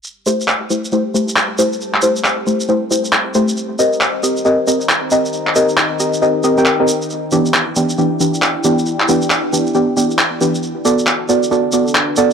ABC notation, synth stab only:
X:1
M:4/4
L:1/16
Q:"Swing 16ths" 1/4=136
K:Em
V:1 name="Synth stab"
z2 [A,EGc] z3 [A,EGc] z [A,EGc] z [A,EGc] z3 [A,EGc] z | z2 [A,EGc] z3 [A,EGc] z [A,EGc] z [A,EGc] z3 [A,EGc] z | z2 [CG_B_e] z3 [CGBe] z [CGBe] z [CGBe] z3 [CGBe] z | z2 [CG_B_e] z3 [CGBe] z [CGBe] z [CGBe] [CGBg] z [CGBe] z2 |
z2 [E,B,DG] z3 [E,B,DG] z [E,B,DG] z [E,B,DG] z3 [E,B,DG] z | z2 [E,B,DG] z3 [E,B,DG] z [E,B,DG] z [E,B,DG] z3 [E,B,DG] z | z2 [B,FAd] z3 [B,FAd] z [B,FAd] z [B,FAd] z3 [B,FAd] z |]